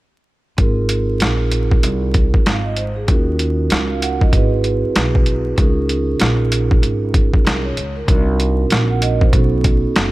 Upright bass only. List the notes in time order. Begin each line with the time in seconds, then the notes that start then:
0.58 G#1
1.21 A#1
1.83 C2
2.34 muted upright bass stroke
2.46 G#1
3.08 D#2
3.71 C#2
4.33 G#1
4.84 muted upright bass stroke
4.95 B1
5.58 C#2
6.20 A#1
6.82 G#1
7.34 muted upright bass stroke
7.45 C2
7.76 C#2
8.08 C2
8.71 A#1
9.33 B1
9.83 muted upright bass stroke
9.96 F#1